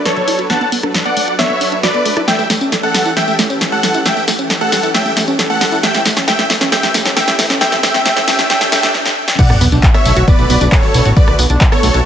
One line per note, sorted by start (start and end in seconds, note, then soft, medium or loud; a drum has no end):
0.05 0.21 F#3 medium
0.05 0.21 D4 medium
0.05 0.42 A4 medium
0.05 0.21 A4 medium
0.05 0.21 B4 medium
0.05 0.10 B4 medium
0.05 0.42 C#5 medium
0.05 0.42 C#5 loud
0.05 snare medium
0.05 closed hi-hat medium
0.17 0.21 F#3 medium
0.17 closed hi-hat soft
0.28 0.43 F#3 medium
0.28 0.43 D4 medium
0.28 0.35 E4 medium
0.28 0.43 A4 loud
0.28 0.43 B4 medium
0.28 open hi-hat loud
0.39 0.46 F#4 loud
0.39 closed hi-hat soft
0.50 0.65 F#3 medium
0.50 0.57 B3 medium
0.50 0.65 D4 medium
0.50 0.65 A4 medium
0.50 0.65 B4 medium
0.50 0.68 F#5 medium
0.50 0.68 A5 loud
0.50 snare medium
0.50 closed hi-hat soft
0.61 0.65 B3 medium
0.61 closed hi-hat soft
0.72 0.79 B3 loud
0.72 open hi-hat loud
0.83 0.99 F#3 medium
0.83 0.94 D4 medium
0.83 0.99 D4 medium
0.83 0.99 A4 medium
0.83 0.99 B4 medium
0.83 cross-stick medium
0.83 closed hi-hat soft
0.94 0.99 B4 medium
0.94 snare medium
0.94 closed hi-hat soft
1.05 1.13 F#3 medium
1.05 1.16 B3 medium
1.05 1.13 D4 medium
1.05 1.13 A4 medium
1.05 1.13 B4 medium
1.05 1.33 D5 medium
1.05 1.32 F#5 medium
1.05 1.33 F#5 loud
1.05 closed hi-hat soft
1.16 1.32 F#3 medium
1.16 1.24 A3 medium
1.16 1.32 D4 medium
1.16 1.32 A4 medium
1.16 1.32 B4 medium
1.16 open hi-hat loud
1.28 1.35 F#4 loud
1.28 closed hi-hat soft
1.39 1.47 F#3 medium
1.39 1.49 B3 loud
1.39 1.47 D4 medium
1.39 1.47 A4 medium
1.39 1.47 B4 medium
1.39 1.75 C#5 medium
1.39 1.75 E5 loud
1.39 snare medium
1.39 closed hi-hat soft
1.50 1.58 F#3 medium
1.50 1.54 B3 medium
1.50 1.58 D4 medium
1.50 1.58 A4 medium
1.50 1.58 B4 medium
1.50 closed hi-hat soft
1.61 1.76 F#3 medium
1.61 1.77 D4 medium
1.61 1.68 D4 medium
1.61 1.76 A4 medium
1.61 1.76 B4 medium
1.61 open hi-hat loud
1.72 1.79 D4 medium
1.72 closed hi-hat medium
1.83 1.99 F#3 medium
1.83 1.99 D4 medium
1.83 1.91 F#4 medium
1.83 1.99 A4 medium
1.83 1.99 B4 medium
1.83 2.19 B4 medium
1.83 2.19 D5 medium
1.83 2.19 D5 loud
1.83 snare medium
1.83 closed hi-hat soft
1.94 2.05 B3 medium
1.94 closed hi-hat soft
2.05 2.21 F#3 medium
2.05 2.10 A3 medium
2.05 2.21 D4 medium
2.05 2.21 A4 medium
2.05 2.21 B4 medium
2.05 open hi-hat loud
2.17 2.21 E4 loud
2.17 cross-stick medium
2.17 closed hi-hat soft
2.27 2.43 E3 medium
2.27 2.35 A3 medium
2.27 2.43 C#4 medium
2.27 2.43 G4 medium
2.27 2.43 A4 medium
2.27 2.46 E5 medium
2.27 2.46 G5 medium
2.27 snare medium
2.27 closed hi-hat soft
2.27 tambourine soft
2.27 riser medium
2.39 2.43 A3 medium
2.39 closed hi-hat soft
2.39 tambourine soft
2.50 2.57 A3 medium
2.50 snare medium
2.50 open hi-hat loud
2.50 tambourine medium
2.61 2.77 E3 medium
2.61 2.77 C#4 medium
2.61 2.72 C#4 medium
2.61 2.77 G4 medium
2.61 2.77 A4 medium
2.61 closed hi-hat soft
2.61 tambourine soft
2.72 2.77 A4 medium
2.72 snare medium
2.72 closed hi-hat soft
2.72 tambourine soft
2.83 2.91 E3 medium
2.83 2.94 A3 medium
2.83 2.91 C#4 medium
2.83 2.91 G4 medium
2.83 2.91 A4 medium
2.83 3.10 A4 medium
2.83 3.10 F#5 medium
2.83 closed hi-hat soft
2.94 3.10 E3 medium
2.94 3.02 G3 medium
2.94 3.10 C#4 medium
2.94 3.10 G4 medium
2.94 3.10 A4 medium
2.94 snare medium
2.94 open hi-hat loud
2.94 tambourine medium
3.05 3.13 E4 loud
3.05 closed hi-hat soft
3.05 tambourine soft
3.16 3.24 E3 medium
3.16 3.24 A3 medium
3.16 3.24 C#4 medium
3.16 3.24 G4 medium
3.16 3.24 A4 medium
3.16 3.35 E5 medium
3.16 3.35 G5 medium
3.16 3.35 G5 loud
3.16 snare medium
3.16 closed hi-hat soft
3.16 tambourine soft
3.27 3.35 E3 medium
3.27 3.32 A3 medium
3.27 3.35 C#4 medium
3.27 3.35 G4 medium
3.27 3.35 A4 medium
3.27 closed hi-hat soft
3.27 tambourine soft
3.39 3.54 E3 medium
3.39 3.46 A3 medium
3.39 3.54 C#4 medium
3.39 3.54 G4 medium
3.39 3.54 A4 medium
3.39 snare medium
3.39 open hi-hat loud
3.39 tambourine medium
3.50 3.60 C#4 medium
3.50 closed hi-hat medium
3.50 tambourine soft
3.61 3.76 E3 medium
3.61 3.76 C#4 medium
3.61 3.77 G4 medium
3.61 3.77 A4 medium
3.61 3.65 A4 medium
3.61 snare medium
3.61 closed hi-hat soft
3.61 tambourine soft
3.72 3.83 A3 medium
3.72 3.99 A4 medium
3.72 3.99 F#5 medium
3.72 closed hi-hat soft
3.83 3.99 E3 loud
3.83 3.91 G3 medium
3.83 3.99 C#4 medium
3.83 3.99 G4 medium
3.83 3.99 A4 medium
3.83 snare medium
3.83 open hi-hat loud
3.83 tambourine medium
3.94 4.02 E4 medium
3.94 closed hi-hat soft
3.94 tambourine soft
4.05 4.21 E3 medium
4.05 4.13 A3 medium
4.05 4.21 C#4 medium
4.05 4.21 G4 medium
4.05 4.21 A4 medium
4.05 4.24 E5 medium
4.05 4.24 G5 medium
4.05 snare medium
4.05 closed hi-hat soft
4.05 tambourine soft
4.17 4.21 A3 medium
4.17 closed hi-hat soft
4.17 tambourine soft
4.28 4.35 A3 loud
4.28 snare medium
4.28 open hi-hat loud
4.28 tambourine medium
4.39 4.54 E3 medium
4.39 4.49 C#4 medium
4.39 4.54 C#4 medium
4.39 4.54 G4 medium
4.39 4.54 A4 medium
4.39 closed hi-hat medium
4.39 tambourine soft
4.50 4.54 A4 medium
4.50 snare medium
4.50 closed hi-hat medium
4.50 tambourine soft
4.61 4.69 E3 medium
4.61 4.72 A3 medium
4.61 4.69 C#4 medium
4.61 4.69 G4 medium
4.61 4.69 A4 medium
4.61 4.88 A4 medium
4.61 4.88 F#5 medium
4.61 closed hi-hat soft
4.72 4.88 E3 medium
4.72 4.79 G3 medium
4.72 4.88 C#4 medium
4.72 4.88 G4 medium
4.72 4.88 A4 medium
4.72 snare medium
4.72 open hi-hat loud
4.72 tambourine medium
4.83 4.91 E4 loud
4.83 closed hi-hat medium
4.83 tambourine soft
4.94 5.02 E3 medium
4.94 5.02 A3 medium
4.94 5.02 C#4 medium
4.94 5.02 G4 medium
4.94 5.02 A4 medium
4.94 5.12 E5 medium
4.94 5.12 G5 medium
4.94 5.12 G5 loud
4.94 snare medium
4.94 closed hi-hat medium
4.94 tambourine soft
5.05 5.13 E3 medium
5.05 5.10 A3 medium
5.05 5.13 C#4 medium
5.05 5.13 G4 medium
5.05 5.13 A4 medium
5.05 closed hi-hat soft
5.05 tambourine soft
5.17 5.32 E3 medium
5.17 5.24 A3 loud
5.17 5.32 C#4 medium
5.17 5.32 G4 medium
5.17 5.32 A4 medium
5.17 snare medium
5.17 open hi-hat loud
5.17 tambourine medium
5.28 5.38 C#4 medium
5.28 closed hi-hat medium
5.28 tambourine soft
5.39 5.54 E3 medium
5.39 5.54 C#4 medium
5.39 5.54 G4 medium
5.39 5.54 A4 medium
5.39 5.43 A4 medium
5.39 snare medium
5.39 closed hi-hat medium
5.39 tambourine soft
5.50 5.60 A3 medium
5.50 5.77 A4 medium
5.50 5.77 F#5 medium
5.50 closed hi-hat soft
5.61 5.77 E3 medium
5.61 5.68 G3 medium
5.61 5.77 C#4 medium
5.61 5.77 G4 medium
5.61 5.77 A4 medium
5.61 snare medium
5.61 open hi-hat loud
5.61 tambourine medium
5.72 5.79 E4 loud
5.72 closed hi-hat soft
5.72 tambourine soft
5.83 5.99 E3 medium
5.83 5.91 A3 medium
5.83 5.99 C#4 medium
5.83 5.99 G4 medium
5.83 5.99 A4 medium
5.83 6.01 E5 medium
5.83 6.01 G5 loud
5.83 snare medium
5.83 closed hi-hat medium
5.83 tambourine soft
5.94 5.99 A3 medium
5.94 snare medium
5.94 closed hi-hat soft
5.94 tambourine soft
6.05 6.13 A3 loud
6.05 snare medium
6.05 open hi-hat loud
6.05 tambourine medium
6.17 6.32 E3 medium
6.17 6.32 C#4 medium
6.17 6.26 C#4 loud
6.17 6.32 G4 medium
6.17 6.32 A4 medium
6.17 snare medium
6.17 closed hi-hat medium
6.17 tambourine soft
6.28 6.35 A3 medium
6.28 6.46 E5 medium
6.28 6.46 G5 loud
6.28 snare medium
6.28 closed hi-hat medium
6.28 tambourine soft
6.39 6.47 E3 medium
6.39 6.43 A3 medium
6.39 6.47 C#4 medium
6.39 6.47 G4 medium
6.39 6.46 A4 medium
6.39 snare medium
6.39 closed hi-hat soft
6.50 6.65 E3 medium
6.50 6.57 A3 loud
6.50 6.65 C#4 medium
6.50 6.65 G4 medium
6.50 6.65 A4 medium
6.50 snare loud
6.50 open hi-hat loud
6.50 tambourine medium
6.61 6.70 C#4 loud
6.61 snare medium
6.61 closed hi-hat medium
6.61 tambourine soft
6.72 6.80 E3 medium
6.72 6.79 A3 medium
6.72 6.80 C#4 medium
6.72 6.80 G4 medium
6.72 6.80 A4 medium
6.72 6.90 E5 medium
6.72 6.90 G5 loud
6.72 snare medium
6.72 closed hi-hat medium
6.72 tambourine soft
6.83 6.91 E3 medium
6.83 6.88 A3 medium
6.83 6.91 C#4 medium
6.83 6.91 G4 medium
6.83 6.91 A4 medium
6.83 snare medium
6.83 closed hi-hat soft
6.83 tambourine soft
6.94 7.10 E3 medium
6.94 7.02 A3 loud
6.94 7.10 C#4 medium
6.94 7.10 G4 medium
6.94 7.10 A4 medium
6.94 snare loud
6.94 open hi-hat loud
6.94 tambourine medium
7.05 7.15 C#4 loud
7.05 snare medium
7.05 closed hi-hat medium
7.05 tambourine soft
7.16 7.32 E3 medium
7.16 7.24 A3 medium
7.16 7.32 C#4 medium
7.16 7.32 G4 medium
7.16 7.32 A4 medium
7.16 7.35 E5 medium
7.16 7.35 G5 loud
7.16 snare loud
7.16 closed hi-hat medium
7.16 tambourine soft
7.28 7.32 A3 medium
7.28 snare medium
7.28 closed hi-hat soft
7.39 7.54 E3 loud
7.39 7.46 A3 loud
7.39 7.54 C#4 medium
7.39 7.54 G4 medium
7.39 7.54 A4 medium
7.39 snare loud
7.39 open hi-hat loud
7.39 tambourine medium
7.50 7.59 C#4 loud
7.50 snare medium
7.50 closed hi-hat medium
7.50 tambourine soft
7.61 7.77 E3 medium
7.61 7.68 A3 medium
7.61 7.77 C#4 medium
7.61 7.77 G4 medium
7.61 7.77 A4 medium
7.61 7.79 E5 medium
7.61 7.79 G5 loud
7.61 snare loud
7.61 closed hi-hat medium
7.61 tambourine soft
7.72 7.76 A3 medium
7.72 snare medium
7.72 closed hi-hat soft
7.72 tambourine soft
7.83 7.91 A3 medium
7.83 8.01 E5 medium
7.83 8.01 G5 loud
7.83 snare loud
7.83 open hi-hat loud
7.83 tambourine medium
7.94 8.10 E3 medium
7.94 7.99 A3 medium
7.94 8.10 C#4 medium
7.94 8.10 G4 medium
7.94 8.10 A4 medium
7.94 snare medium
7.94 closed hi-hat medium
7.94 tambourine soft
8.05 8.13 A3 medium
8.05 8.23 E5 medium
8.05 8.23 G5 loud
8.05 8.24 G5 loud
8.05 snare loud
8.05 closed hi-hat medium
8.05 tambourine soft
8.16 8.24 E3 medium
8.16 8.21 A3 medium
8.16 8.24 C#4 medium
8.16 8.24 G4 medium
8.16 8.24 A4 medium
8.16 snare medium
8.16 closed hi-hat soft
8.16 tambourine soft
8.28 8.43 E3 loud
8.28 8.35 A3 medium
8.28 8.43 C#4 medium
8.28 8.43 G4 medium
8.28 8.43 A4 medium
8.28 8.46 E5 medium
8.28 8.46 G5 loud
8.28 snare loud
8.28 open hi-hat loud
8.28 tambourine medium
8.39 8.43 A3 medium
8.39 snare medium
8.39 closed hi-hat medium
8.39 tambourine soft
8.50 8.58 E3 medium
8.50 8.57 A3 medium
8.50 8.58 C#4 medium
8.50 8.58 G4 medium
8.50 8.58 A4 medium
8.50 8.68 E5 medium
8.50 8.68 G5 loud
8.50 snare loud
8.50 closed hi-hat medium
8.50 tambourine soft
8.61 8.69 E3 medium
8.61 8.65 A3 medium
8.61 8.69 C#4 medium
8.61 8.69 G4 medium
8.61 8.69 A4 medium
8.61 snare medium
8.61 closed hi-hat soft
8.61 tambourine soft
8.72 8.88 E3 medium
8.72 8.79 A3 medium
8.72 8.88 C#4 medium
8.72 8.88 G4 medium
8.72 8.88 A4 medium
8.72 8.90 E5 medium
8.72 8.90 G5 loud
8.72 snare loud
8.72 open hi-hat loud
8.72 tambourine medium
8.83 8.88 A3 medium
8.83 snare loud
8.83 closed hi-hat medium
8.83 tambourine soft
8.94 snare medium
9.06 snare medium
9.28 snare medium
9.39 9.54 D3 medium
9.39 9.54 A3 medium
9.39 9.54 B3 medium
9.39 9.46 B3 medium
9.39 9.54 F#4 medium
9.39 9.57 D5 medium
9.39 9.57 F#5 loud
9.39 kick loud
9.39 closed hi-hat medium
9.39 crash loud
9.39 tambourine soft
9.39 sub drop medium
9.50 9.57 B1 medium
9.50 9.54 B3 medium
9.50 cross-stick medium
9.50 closed hi-hat soft
9.50 tambourine soft
9.61 9.68 B1 medium
9.61 9.68 B3 loud
9.61 open hi-hat loud
9.61 tambourine medium
9.72 9.79 B1 medium
9.72 9.88 D3 loud
9.72 9.88 A3 loud
9.72 9.88 B3 medium
9.72 9.83 D4 medium
9.72 9.88 F#4 medium
9.72 closed hi-hat medium
9.72 tambourine soft
9.83 9.88 B4 medium
9.83 kick loud
9.83 clap loud
9.83 closed hi-hat medium
9.83 tambourine soft
9.94 10.02 D3 medium
9.94 10.02 A3 medium
9.94 10.02 B3 medium
9.94 10.05 B3 medium
9.94 10.02 F#4 medium
9.94 10.21 C#5 medium
9.94 10.21 E5 loud
9.94 cross-stick medium
9.94 closed hi-hat soft
9.94 tambourine soft
10.05 10.12 B1 loud
10.05 10.21 D3 medium
10.05 10.21 A3 medium
10.05 10.13 A3 medium
10.05 10.21 B3 medium
10.05 10.21 F#4 medium
10.05 open hi-hat loud
10.05 tambourine medium
10.17 10.23 B1 medium
10.17 10.24 F#4 loud
10.17 closed hi-hat medium
10.17 tambourine soft
10.28 10.36 D3 medium
10.28 10.36 A3 medium
10.28 10.38 B3 loud
10.28 10.36 B3 medium
10.28 10.36 F#4 medium
10.28 10.64 B4 medium
10.28 10.64 D5 loud
10.28 10.64 D5 medium
10.28 kick loud
10.28 closed hi-hat medium
10.28 tambourine soft
10.39 10.46 B1 medium
10.39 10.47 D3 medium
10.39 10.47 A3 medium
10.39 10.43 B3 medium
10.39 10.47 B3 medium
10.39 10.47 F#4 medium
10.39 closed hi-hat soft
10.39 tambourine soft
10.50 10.57 B1 loud
10.50 10.66 D3 medium
10.50 10.66 A3 medium
10.50 10.57 B3 loud
10.50 10.66 B3 medium
10.50 10.66 F#4 medium
10.50 open hi-hat loud
10.50 tambourine medium
10.61 10.68 B1 medium
10.61 10.72 D4 loud
10.61 closed hi-hat medium
10.61 tambourine soft
10.72 10.88 D3 medium
10.72 10.88 A3 medium
10.72 10.88 B3 medium
10.72 10.88 F#4 medium
10.72 11.08 A4 medium
10.72 10.77 B4 medium
10.72 11.08 C#5 loud
10.72 kick loud
10.72 clap loud
10.72 closed hi-hat medium
10.72 tambourine soft
10.83 10.88 F#3 medium
10.83 closed hi-hat soft
10.83 tambourine soft
10.94 11.01 B1 loud
10.94 11.10 D3 loud
10.94 11.10 A3 loud
10.94 11.10 B3 loud
10.94 11.02 E4 medium
10.94 11.10 F#4 medium
10.94 open hi-hat loud
10.94 tambourine medium
11.05 11.12 A1 medium
11.05 11.13 F#4 loud
11.05 closed hi-hat medium
11.05 tambourine soft
11.17 11.32 D3 medium
11.17 11.32 A3 medium
11.17 11.32 B3 medium
11.17 11.24 B3 medium
11.17 11.32 F#4 medium
11.17 11.35 B4 medium
11.17 11.35 D5 loud
11.17 kick loud
11.17 closed hi-hat medium
11.17 tambourine soft
11.28 11.34 B1 medium
11.28 11.32 B3 medium
11.28 cross-stick medium
11.28 closed hi-hat soft
11.28 tambourine soft
11.39 11.46 B1 medium
11.39 11.46 B3 loud
11.39 open hi-hat loud
11.39 tambourine medium
11.50 11.57 B1 medium
11.50 11.65 D3 medium
11.50 11.66 A3 medium
11.50 11.65 B3 loud
11.50 11.60 D4 loud
11.50 11.66 F#4 medium
11.50 closed hi-hat medium
11.50 tambourine soft
11.61 11.65 B4 medium
11.61 kick loud
11.61 clap loud
11.61 closed hi-hat medium
11.61 tambourine soft
11.72 11.80 D3 medium
11.72 11.80 A3 medium
11.72 11.80 B3 medium
11.72 11.83 B3 medium
11.72 11.80 F#4 medium
11.72 11.99 A4 medium
11.72 11.99 C#5 loud
11.72 cross-stick medium
11.72 closed hi-hat soft
11.72 tambourine soft
11.83 11.90 B1 loud
11.83 11.99 D3 medium
11.83 11.99 A3 medium
11.83 11.90 A3 medium
11.83 11.99 B3 medium
11.83 11.99 F#4 medium
11.83 open hi-hat loud
11.83 tambourine medium
11.94 12.01 B1 medium
11.94 12.02 F#4 loud
11.94 closed hi-hat medium
11.94 tambourine soft